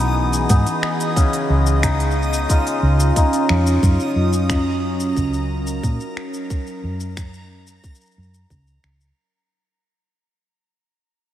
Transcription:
Already playing: B1 D#3 E3 B3 C#4 D#4 F#4 G#4 D#5 D#6
0.33 open hi-hat, shaker
0.49 G#2 B3 D#4 G#4, kick, open hi-hat, shaker
0.67 open hi-hat, shaker
0.83 finger snap
1.00 open hi-hat, shaker
1.16 C#3, kick, open hi-hat, shaker
1.33 open hi-hat, shaker
1.49 C#2 G#3
1.66 shaker
1.77 C#4
1.83 D#4, finger snap, kick, open hi-hat, shaker
2.00 open hi-hat, shaker
2.11 shaker
2.22 shaker
2.33 F4, open hi-hat, shaker
2.49 G#3 D#4 F4, kick, open hi-hat, shaker
2.67 open hi-hat, shaker
2.83 C#2
3.00 open hi-hat, shaker
3.16 G#3 D#4 F4, kick, open hi-hat, shaker
3.33 open hi-hat, shaker
3.49 F2, finger snap
3.66 open hi-hat, shaker
3.83 F#2 F#3 A#5, kick, shaker
4.00 shaker
4.16 F#2
4.33 shaker
4.50 finger snap, kick, shaker
4.85 A#4
5.00 shaker
5.17 C#2, kick, shaker
5.34 shaker
5.67 shaker
5.83 A#2, kick, shaker
6.00 shaker
6.17 finger snap
6.34 shaker
6.50 kick, shaker
6.67 shaker
6.83 F#2
7.00 shaker
7.17 finger snap, kick, shaker
7.34 shaker
7.67 shaker
7.84 kick, shaker
7.95 shaker
8.01 shaker
8.06 shaker
8.11 shaker
8.18 F#2
8.23 shaker
8.34 shaker
8.50 C#2, kick, shaker
8.67 shaker
8.84 C#2, finger snap
9.01 shaker

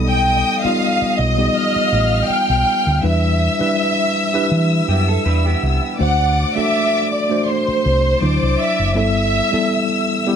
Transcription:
Already playing: B1 G3 B3 D#4 A4 D#5 D#6
0.08 G5
0.64 G3 B3 D#4 F4 F5, muted fingered electric bass stroke
1.02 muted fingered electric bass stroke
1.18 B1 D#5
1.37 G3 B3 D#4 G4
1.54 F5 F6
1.76 muted fingered electric bass stroke
1.93 A1
2.28 G5, muted fingered electric bass stroke
2.50 B1
2.87 D2
3.02 E2 G3 D4 E4 B4 E5 E6
3.59 G3 D4 E4 B4, muted fingered electric bass stroke
4.33 D4 E4 G4 B4
4.52 E3
4.88 F#2 B3 G4
5.08 A4
5.26 E2 D4 B4
5.45 B3 G4
5.63 C2
5.99 D2 A3 D4 F#4 C5 D5 F#5 D6
6.55 A3 D4 F#4 A4 E5, muted fingered electric bass stroke
7.12 D5
7.29 A3 D4 F#4 C5
7.47 C5 C6
7.68 muted fingered electric bass stroke
7.86 C2
8.21 D2 F#3 D4 E4 C5 D5 D6
8.42 C2
8.61 E5
8.79 F#1
8.95 G1 G3 B3 E4 A4 E5 E6
9.52 G3 B3 E4 A4, muted fingered electric bass stroke
10.27 G3 B3 E4 G4

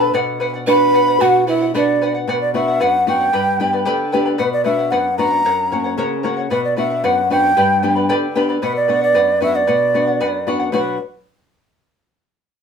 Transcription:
Already playing: B2 D4 F#4 A4 B4 B5
0.00 A4 B4 A5
0.14 B2 B4 D5 F#5
0.40 B4 D5 F#5
0.54 D5 F#5
0.67 D4 F#4 B4 D5 F#5 B5
0.93 B4 D5 F#5
1.07 D5 F#5
1.20 B2 F#4 B4 D5 F#5
1.47 E4 B4 D5 E5 F#5
1.61 D5 F#5
1.74 D4 F#4 B4 D5 F#5
2.01 B4 D5 F#5
2.14 D5 F#5
2.28 B2 B4 D5 F#5
2.41 D5
2.54 B3 D4 F#4 B4 D5 E5 F#5
2.68 D5 F#5
2.80 F#2 B4 D5 F#5
3.07 B3 D4 F#4 B4 D5 F#5 G5
3.20 D5 F#5
3.33 G2 G4 B4 D5 G5 B5
3.60 B3 D4 G4 B4 D5 G5 B5
3.73 B4 D5 B5
3.85 D3 G4 B4 D5 G5 B5
4.12 B3 D4 G4 B4 D5 G5 B5
4.26 B4 D5 B5
4.38 B2 B4 D5 F#5
4.53 D5
4.64 B3 D4 F#4 B4 D5 E5 F#5
4.78 D5 F#5
4.91 F#2 B4 D5 F#5
5.17 B3 D4 F#4 B4 D5 F#5 A#5
5.31 D5 F#5
5.45 F#2 A#4 C#5 F#5
5.71 A#3 C#4 F#4 A#4 C#5 F#5
5.84 C#5 F#5
5.97 C#3 A#4 C#5 F#5
6.23 A#3 C#4 F#4 A#4 C#5 F#5
6.37 C#5 F#5
6.50 B2 B4 D5 F#5
6.64 D5
6.76 B3 D4 F#4 B4 D5 E5 F#5
6.90 D5 F#5
7.04 F#2 B4 D5 F#5
7.30 B3 D4 F#4 B4 D5 F#5 G5
7.44 D5 F#5
7.57 G2 G4 B4 D5 G5 B5
7.82 B3 D4 G4 B4 D5 G5 B5
7.95 B4 D5 B5
8.09 D3 G4 B4 D5 G5 B5
8.35 B3 D4 G4 B4 D5 G5 B5
8.49 B4 D5 B5
8.62 B2 B4 D5 F#5
8.76 D5
8.88 B3 D4 F#4 B4 D5 F#5
9.01 D5 F#5
9.14 F#2 B4 D5 F#5
9.40 B3 D4 F#4 B4 D5 E5 F#5
9.54 D5 F#5
9.67 B2 B4 D5 F#5
9.94 B3 D4 F#4 B4 D5 F#5
10.07 D5 F#5
10.20 F#2 B4 D5 F#5
10.47 B3 D4 F#4 B4 D5 F#5
10.60 D5 F#5
10.72 B2 F#3 B3 D4 F#4 B4 D5 F#5

